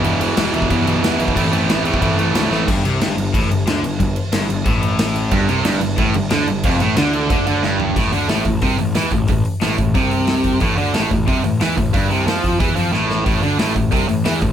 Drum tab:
CC |x-x-x-x-x-x-x-x-|x-x-x-x-x-x-x---|x-x-x-x-x-x-x-x-|x-x-x-x-x-x-x-x-|
HH |----------------|----------------|----------------|----------------|
SD |----o-------o---|----o-------o-o-|----o-------o---|----o-------o---|
FT |----------------|----------------|----------------|----------------|
BD |-------oo------o|o------oo-------|o-------o-------|o-------o-------|

CC |x-x-x-x-x-x-x-x-|x-x-x-x-x-x-----|x---------------|----------------|
HH |----------------|----------------|--o-o-o-o-o-o-o-|o-o-o-o-o-o-o-o-|
SD |----o-------o---|----o-------o---|----o-------o---|----o-------o---|
FT |----------------|--------------o-|----------------|----------------|
BD |o-------o-------|o-------o-------|o-----o-o-----o-|o-----o-o-----o-|

CC |----------------|----------------|----------------|
HH |o-o-o-o-o-o-o-o-|o-o-o-o-o-o-----|o-o-o-o-o-o-o-o-|
SD |----o-------o---|----o-------o-o-|----o-------o---|
FT |----------------|----------------|----------------|
BD |o-----o-o-----o-|o-----o-o-------|o-----o-o-----o-|